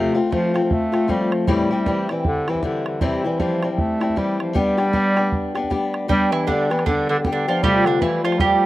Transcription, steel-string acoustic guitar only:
0.00 0.16 F3 medium
0.00 0.15 A3 medium
0.00 0.14 C4 medium
0.00 0.13 F4 medium
0.14 0.31 A3 soft
0.14 0.31 C4 soft
0.14 0.31 F4 medium
0.31 0.54 F3 soft
0.31 0.55 A3 medium
0.31 0.54 C4 medium
0.31 0.53 F4 medium
0.54 0.93 A3 soft
0.54 0.93 C4 soft
0.54 0.91 F4 soft
0.92 1.08 A3 soft
0.92 1.08 C4 soft
0.92 1.08 F4 soft
1.08 1.47 F3 medium
1.08 1.47 A3 medium
1.08 1.48 C4 medium
1.08 1.48 F4 medium
1.47 1.70 A2 medium
1.47 1.71 E3 medium
1.47 1.71 G3 medium
1.47 1.71 C4 medium
1.47 1.69 E4 medium
1.71 1.86 G3 soft
1.71 1.87 C4 medium
1.71 1.86 E4 medium
1.87 2.09 E3 medium
1.87 2.10 G3 medium
1.87 2.10 C4 medium
1.87 2.08 E4 medium
2.09 2.50 G3 soft
2.09 2.49 C4 soft
2.09 2.47 E4 soft
2.48 2.63 G3 soft
2.48 2.63 C4 soft
2.48 2.63 E4 soft
2.63 3.00 E3 soft
2.63 3.01 G3 medium
2.63 3.00 C4 medium
2.63 3.01 E4 medium
3.01 3.24 C3 medium
3.01 3.25 E3 medium
3.01 3.25 G3 medium
3.01 3.24 C4 medium
3.01 3.23 E4 medium
3.24 3.39 G3 soft
3.24 3.40 C4 medium
3.24 3.40 E4 medium
3.40 3.63 E3 medium
3.40 3.63 G3 medium
3.40 3.62 C4 medium
3.40 3.61 E4 medium
3.62 4.02 G3 soft
3.62 4.00 C4 soft
3.62 3.99 E4 soft
4.00 4.16 G3 soft
4.00 4.16 C4 soft
4.00 4.16 E4 medium
4.16 4.54 E3 medium
4.16 4.54 G3 medium
4.16 4.55 C4 medium
4.16 4.55 E4 medium
4.54 4.78 G3 medium
4.54 4.78 B3 medium
4.54 4.77 D4 medium
4.54 4.76 G4 medium
4.77 4.93 B3 soft
4.77 4.93 D4 medium
4.77 4.93 G4 medium
4.93 5.17 G3 medium
4.93 5.17 B3 medium
4.93 5.16 D4 medium
4.93 5.15 G4 medium
5.16 5.56 B3 soft
5.16 5.55 D4 soft
5.16 5.54 G4 medium
5.55 5.70 B3 soft
5.55 5.70 D4 soft
5.55 5.70 G4 soft
5.70 6.08 G3 medium
5.70 6.08 B3 medium
5.70 6.08 D4 medium
5.70 6.10 G4 medium
6.08 6.46 G3 medium
6.08 6.46 B3 medium
6.08 6.47 D4 medium
6.08 6.48 G4 medium
6.47 6.70 G3 medium
6.47 6.71 B3 medium
6.47 6.70 D4 medium
6.47 6.69 G4 medium
6.70 6.86 B3 soft
6.70 6.86 D4 soft
6.70 6.86 G4 soft
6.86 7.24 G3 medium
6.86 7.24 B3 medium
6.86 7.25 D4 medium
6.86 7.26 G4 medium
7.25 7.48 G3 medium
7.25 7.48 B3 medium
7.25 7.48 D4 medium
7.25 7.47 G4 medium
7.48 7.63 B3 soft
7.48 7.64 D4 medium
7.48 7.63 G4 soft
7.63 8.02 F2 medium
7.63 8.02 C3 medium
7.63 8.00 F3 medium
7.63 8.01 G3 medium
7.63 8.02 A3 medium
7.63 8.02 F4 medium
8.01 8.25 F3 medium
8.01 8.24 G3 medium
8.01 8.23 A3 medium
8.01 8.23 F4 medium
8.24 8.39 F3 soft
8.24 8.39 G3 soft
8.24 8.40 A3 soft
8.24 8.40 F4 medium
8.40 8.66 F3 medium
8.40 8.66 G3 medium
8.40 8.66 A3 medium
8.40 8.66 F4 medium

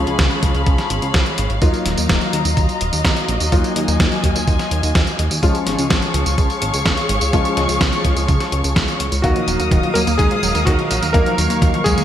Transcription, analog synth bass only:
0.07 0.17 C#2 medium
0.19 0.29 C#2 loud
0.43 0.53 C#2 medium
0.55 0.65 C#2 medium
0.67 0.77 C#2 loud
0.90 1.00 G#1 loud
1.02 1.12 C#2 medium
1.14 1.24 C#2 loud
1.38 1.48 G#1 medium
1.50 1.60 G#1 medium
1.62 1.72 D#2 loud
1.86 1.96 D#1 medium
1.98 2.08 D#2 medium
2.09 2.19 D#1 loud
2.33 2.43 D#2 medium
2.45 2.55 D#2 medium
2.57 2.67 D#2 loud
2.81 2.91 D#1 medium
2.93 3.03 D#2 medium
3.05 3.15 D#2 loud
3.29 3.39 A#1 medium
3.40 3.50 D#2 medium
3.52 3.62 D#2 medium
3.76 3.86 D#2 medium
3.88 3.98 D#2 medium
4.00 4.10 D#2 loud
4.24 4.34 D#2 medium
4.36 4.46 D#2 medium
4.47 4.58 D#2 loud
4.71 4.81 D#2 medium
4.83 4.93 D#2 medium
4.95 5.05 D#2 loud
5.19 5.29 D#2 medium
5.31 5.41 D#2 medium
5.43 5.53 C#2 loud
5.67 5.77 G#1 medium
5.79 5.89 C#2 medium
5.90 6.00 G#1 loud
6.14 6.24 C#2 medium
6.26 6.36 C#2 medium
6.38 6.48 C#2 loud
6.62 6.72 G#1 medium
6.74 6.84 C#2 medium
6.86 6.96 C#2 loud
7.09 7.19 G#1 medium
7.21 7.31 C#2 medium
7.33 7.43 C#2 loud
7.57 7.67 C#2 medium
7.69 7.79 C#2 medium
7.81 7.91 C#2 loud
8.05 8.15 C#2 medium
8.17 8.27 C#2 medium
8.28 8.39 C#2 loud
8.52 8.62 C#2 loud
8.64 8.74 C#2 medium
8.76 8.86 C#2 loud
9.00 9.10 C#2 medium
9.12 9.22 C#2 medium
9.24 9.34 D#2 loud
9.48 9.58 D#1 medium
9.59 9.70 D#2 medium
9.71 9.81 D#1 loud
9.95 10.05 D#2 medium
10.07 10.17 D#2 medium
10.19 10.29 D#2 loud
10.43 10.53 D#1 medium
10.55 10.65 D#2 medium
10.67 10.77 D#2 loud
10.90 11.00 A#1 medium
11.02 11.12 D#2 medium
11.14 11.24 D#2 loud
11.38 11.48 D#2 medium
11.50 11.60 D#2 medium
11.62 11.72 D#2 loud
11.86 11.96 D#2 medium
11.98 12.04 D#2 medium

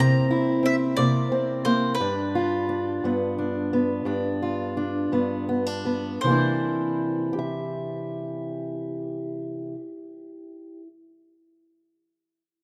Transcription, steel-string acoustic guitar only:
0.00 0.97 C3 medium
0.00 0.97 A#3 medium
0.00 0.62 C4 medium
0.00 0.29 E4 medium
0.31 1.99 E4 medium
0.63 1.31 C4 medium
0.98 1.95 C3 medium
0.98 1.65 A#3 medium
1.32 1.95 C4 medium
1.66 1.96 A#3 medium
2.00 3.02 G2 medium
2.00 2.68 D4 medium
2.35 4.41 F4 medium
2.69 3.37 D4 medium
3.04 4.04 G2 medium
3.04 3.72 B3 medium
3.38 4.05 D4 medium
3.73 5.11 B3 medium
4.05 5.11 G2 medium
4.05 4.76 D4 medium
4.42 6.18 F4 medium
4.77 5.48 D4 medium
5.12 6.17 G2 medium
5.12 5.48 B3 medium
5.49 5.66 B3 medium
5.66 6.22 D4 soft
5.85 6.18 B3 medium
6.24 9.74 C3 medium
6.24 9.74 E3 medium
6.24 7.33 A#3 medium
6.29 9.79 D4 medium
6.29 7.38 E4 medium
7.33 10.81 G4 medium
7.39 10.87 E5 medium

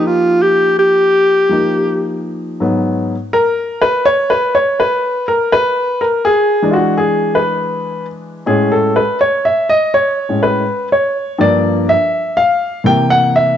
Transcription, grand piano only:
0.00 1.46 F3 medium
0.00 1.47 A#3 medium
0.00 1.48 D#4 medium
0.00 1.49 G4 medium
1.49 2.60 F3 soft
1.49 2.61 A#3 soft
1.49 2.61 D#4 soft
1.49 2.62 G4 soft
2.60 3.13 G#2 medium
2.60 3.14 F#3 soft
2.60 3.14 B3 medium
3.33 3.84 A#4 loud
3.81 4.07 B4 medium
4.05 4.32 C#5 loud
4.30 4.56 B4 medium
4.55 4.81 C#5 medium
4.80 5.26 B4 medium
5.28 5.51 A#4 medium
5.52 6.03 B4 loud
6.01 6.27 A#4 medium
6.25 6.67 G#4 medium
6.62 8.42 E3 medium
6.62 8.42 G#3 medium
6.62 8.43 D4 medium
6.71 6.76 F4 medium
6.71 6.97 F#4 medium
6.97 7.37 G#4 medium
7.35 8.05 B4 medium
8.46 8.99 A2 medium
8.46 8.99 G#3 soft
8.46 8.99 C#4 medium
8.46 8.72 G#4 medium
8.72 8.96 A4 medium
8.96 9.18 B4 medium
9.21 9.45 C#5 medium
9.45 9.70 E5 medium
9.69 9.92 D#5 medium
9.94 10.39 C#5 medium
10.29 10.62 A2 soft
10.29 10.62 G#3 soft
10.29 10.63 C#4 medium
10.43 10.88 B4 medium
10.92 11.37 C#5 medium
11.38 11.91 G2 medium
11.38 11.92 F3 medium
11.38 11.92 A#3 medium
11.38 11.90 D5 loud
11.89 12.39 E5 medium
12.37 12.82 F5 medium
12.84 13.57 C3 medium
12.84 13.57 E3 soft
12.84 13.57 A#3 medium
12.84 13.11 G5 loud
13.10 13.35 F#5 loud
13.36 13.57 E5 medium

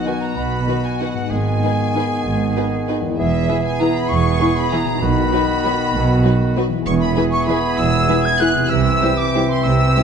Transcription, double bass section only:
0.36 0.62 B1 soft
1.30 1.56 G#1 medium
2.25 2.50 G#1 medium
3.19 3.44 E1 medium
4.11 4.36 E1 medium
5.02 5.28 B1 medium
5.94 6.19 B1 medium
6.86 7.11 E1 medium
7.78 8.03 E1 medium
8.71 8.97 C2 medium
9.65 9.91 C2 medium

